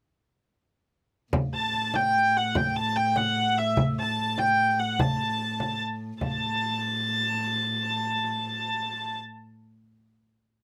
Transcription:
1.33 6.20 A2 medium
1.33 frame drum medium
1.53 1.96 A5 medium
1.53 frame drum soft
1.73 frame drum soft
1.94 2.37 G5 loud
1.94 frame drum medium
2.37 2.57 F#5 medium
2.55 2.76 G5 medium
2.55 frame drum medium
2.76 2.96 A5 medium
2.76 frame drum soft
2.96 3.17 G5 medium
2.96 frame drum soft
3.16 3.58 F#5 medium
3.16 frame drum medium
3.58 3.78 E5 medium
3.77 frame drum medium
3.98 4.39 A5 medium
3.98 frame drum soft
4.18 frame drum soft
4.38 4.79 G5 medium
4.38 frame drum medium
4.79 5.00 F#5 medium
4.99 5.81 A5 medium
4.99 frame drum medium
5.20 frame drum soft
5.60 frame drum medium
6.21 9.18 A2 medium
6.21 9.18 A5 medium
6.21 frame drum medium

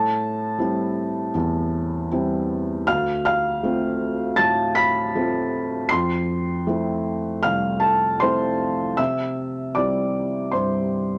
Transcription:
0.00 0.56 A2 medium
0.00 1.30 A4 medium
0.00 1.34 A5 medium
0.58 1.30 G3 soft
0.58 1.30 C4 soft
0.58 1.31 E4 medium
1.34 2.08 E2 medium
2.12 2.83 G3 soft
2.12 2.83 C4 medium
2.12 2.84 E4 medium
2.87 3.61 D2 medium
2.87 3.23 F5 medium
2.87 3.24 F6 loud
3.25 4.35 F5 medium
3.25 4.38 F6 medium
3.63 4.34 A3 medium
3.63 4.35 C4 medium
3.63 4.35 F4 medium
4.36 5.12 A2 medium
4.36 4.73 A5 medium
4.36 4.75 A6 medium
4.75 5.87 B5 medium
4.75 5.90 B6 loud
5.15 5.87 A3 medium
5.15 5.88 C4 soft
5.15 5.88 F4 medium
5.89 6.65 F2 medium
5.89 7.40 C6 medium
5.89 7.43 C7 medium
6.67 7.40 A3 medium
6.67 7.40 C4 soft
6.67 7.41 E4 medium
7.43 8.19 C2 medium
7.43 7.80 F5 medium
7.43 7.82 F6 medium
7.80 8.18 A4 medium
7.80 8.20 A5 medium
8.20 8.95 A3 soft
8.20 8.95 C4 soft
8.20 8.95 E4 medium
8.20 8.95 C5 medium
8.20 8.98 C6 medium
8.97 9.74 C3 medium
8.97 9.72 E5 medium
8.97 9.75 E6 medium
9.75 10.51 G3 soft
9.75 10.51 C4 soft
9.75 10.51 E4 soft
9.75 10.50 D5 medium
9.75 10.54 D6 medium
10.52 11.18 G2 soft
10.52 11.18 C5 medium
10.52 11.18 C6 medium

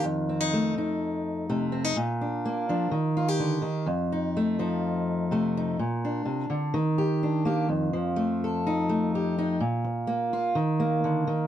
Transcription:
0.00 1.95 F2 medium
0.00 0.76 D#3 medium
0.29 0.41 C4 soft
0.41 0.76 D#4 soft
0.53 1.48 A3 medium
0.77 1.72 D#4 soft
0.77 muted steel-string acoustic guitar stroke medium
1.50 1.94 C3 medium
1.50 1.94 A3 soft
1.72 1.84 C4 medium
1.84 1.96 D#4 soft
1.96 2.92 A#2 medium
2.21 2.68 D4 soft
2.45 2.90 A#3 medium
2.69 2.90 F3 medium
2.69 2.89 D4 medium
2.91 3.61 D#3 medium
3.17 3.28 F4 medium
3.28 3.87 G4 soft
3.40 3.63 D3 medium
3.62 3.86 D#3 medium
3.86 5.78 F2 medium
4.12 4.58 D#4 soft
4.37 5.31 A3 medium
4.59 5.76 F3 medium
4.59 5.55 D#4 medium
5.31 5.76 C3 medium
5.31 5.76 A3 medium
5.57 5.77 D#4 medium
5.79 6.25 A#2 medium
6.05 6.73 D4 soft
6.25 6.49 C3 medium
6.50 6.74 D3 medium
6.74 7.93 D#3 medium
6.98 7.45 G4 medium
7.23 7.67 D4 medium
7.45 7.67 A#3 medium
7.45 7.67 G4 medium
7.69 9.60 F2 medium
7.93 9.58 F3 medium
8.16 8.88 A3 medium
8.44 9.14 A4 medium
8.67 9.37 D#4 medium
8.89 9.58 A3 medium
9.15 9.59 G4 medium
9.39 9.59 D#4 medium
9.60 10.56 A#2 medium
9.84 muted steel-string acoustic guitar stroke medium
10.07 10.53 A#3 medium
10.33 10.56 F4 medium
10.55 11.26 D#3 medium
10.80 11.47 A#3 medium
11.04 11.28 D3 medium
11.27 11.47 D#3 medium

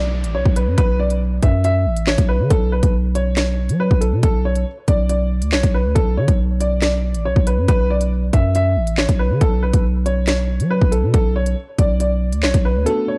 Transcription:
0.00 0.25 B1 loud
0.00 0.32 D5 medium
0.00 downlifter medium
0.24 0.36 A1 medium
0.24 closed hi-hat medium
0.35 0.45 B1 medium
0.35 0.55 C#5 medium
0.45 0.69 B1 loud
0.45 kick medium
0.56 0.76 B4 medium
0.56 closed hi-hat medium
0.67 0.77 F#2 medium
0.78 1.40 B1 loud
0.78 0.98 B4 loud
0.78 kick loud
0.78 closed hi-hat medium
1.00 1.19 D5 medium
1.10 closed hi-hat medium
1.43 1.87 F#2 loud
1.43 1.63 E5 medium
1.43 kick loud
1.43 closed hi-hat medium
1.64 2.05 E5 medium
1.64 closed hi-hat medium
1.86 2.17 A1 medium
1.97 closed hi-hat medium
2.07 2.27 C#5 medium
2.07 snare loud
2.07 clap loud
2.18 2.41 B1 loud
2.18 kick medium
2.18 closed hi-hat medium
2.29 2.49 B4 medium
2.40 2.50 D3 medium
2.50 2.82 B1 loud
2.50 2.70 A4 loud
2.50 kick loud
2.50 closed hi-hat medium
2.72 2.92 B4 medium
2.83 3.71 B1 loud
2.83 kick medium
2.83 closed hi-hat medium
3.15 3.35 C#5 medium
3.15 closed hi-hat medium
3.37 3.78 C#5 medium
3.37 snare loud
3.37 clap medium
3.37 closed hi-hat medium
3.69 3.90 F#3 loud
3.69 closed hi-hat medium
3.80 4.00 B4 medium
3.91 4.14 B1 loud
3.91 kick medium
4.01 4.21 A4 medium
4.01 closed hi-hat medium
4.12 4.23 B2 medium
4.23 4.65 B1 loud
4.23 4.43 A4 loud
4.23 kick loud
4.23 closed hi-hat medium
4.45 4.65 C#5 medium
4.55 closed hi-hat medium
4.88 5.43 B1 loud
4.88 5.08 D5 medium
4.88 kick loud
4.88 closed hi-hat medium
5.09 5.50 D5 medium
5.09 closed hi-hat medium
5.42 5.54 D2 loud
5.42 closed hi-hat medium
5.52 5.63 B1 loud
5.52 5.73 C#5 medium
5.52 snare loud
5.52 clap loud
5.63 5.87 B1 loud
5.63 kick medium
5.63 closed hi-hat medium
5.74 5.94 B4 medium
5.85 5.95 D2 medium
5.95 6.19 B1 loud
5.95 6.16 A4 loud
5.95 kick loud
5.95 closed hi-hat medium
6.17 6.28 D3 loud
6.17 6.37 C#5 medium
6.28 7.16 B1 loud
6.28 kick medium
6.28 closed hi-hat medium
6.61 6.80 D5 medium
6.61 closed hi-hat medium
6.82 7.23 D5 medium
6.82 snare loud
6.82 clap medium
6.82 closed hi-hat medium
7.14 7.27 A1 loud
7.14 closed hi-hat medium
7.25 7.36 B1 loud
7.25 7.45 C#5 medium
7.36 7.59 B1 loud
7.36 kick medium
7.47 7.67 B4 medium
7.47 closed hi-hat medium
7.58 7.68 F#2 medium
7.68 8.31 B1 loud
7.68 7.88 B4 loud
7.68 kick loud
7.68 closed hi-hat medium
7.90 8.10 D5 medium
8.01 closed hi-hat medium
8.33 8.78 F#2 loud
8.33 8.53 E5 medium
8.33 kick loud
8.33 closed hi-hat medium
8.55 8.96 E5 medium
8.55 closed hi-hat medium
8.76 9.07 A1 loud
8.87 closed hi-hat medium
8.98 9.18 C#5 medium
8.98 snare loud
8.98 clap loud
9.09 9.32 B1 loud
9.09 kick medium
9.09 closed hi-hat medium
9.19 9.39 B4 medium
9.30 9.41 D3 medium
9.41 9.72 B1 loud
9.41 9.61 A4 loud
9.41 kick loud
9.41 closed hi-hat medium
9.63 9.83 B4 medium
9.73 10.61 B1 loud
9.73 kick medium
9.73 closed hi-hat medium
10.06 10.26 C#5 medium
10.06 closed hi-hat medium
10.27 10.68 C#5 medium
10.27 snare loud
10.27 clap medium
10.27 closed hi-hat medium
10.60 10.80 F#3 loud
10.60 closed hi-hat medium
10.71 10.91 B4 medium
10.81 11.05 B1 loud
10.81 kick medium
10.92 11.12 A4 medium
10.92 closed hi-hat medium
11.03 11.13 B2 medium
11.14 11.55 B1 loud
11.14 11.34 A4 loud
11.14 kick loud
11.14 closed hi-hat medium
11.36 11.56 C#5 medium
11.46 closed hi-hat medium
11.79 12.34 B1 loud
11.79 11.99 D5 medium
11.79 kick loud
11.79 closed hi-hat medium
12.00 12.41 D5 medium
12.00 closed hi-hat medium
12.32 12.45 D2 loud
12.32 closed hi-hat medium
12.43 12.54 B1 loud
12.43 12.63 C#5 medium
12.43 snare loud
12.43 clap loud
12.54 12.77 B1 loud
12.54 kick medium
12.54 closed hi-hat medium
12.65 12.85 B4 medium
12.76 12.86 D2 loud
12.83 13.18 A3 medium
12.83 13.18 B3 medium
12.83 13.18 D4 medium
12.83 13.06 A4 loud
12.83 closed hi-hat medium
12.88 13.18 F#4 medium
12.88 13.18 A4 medium
13.08 13.18 C#5 medium

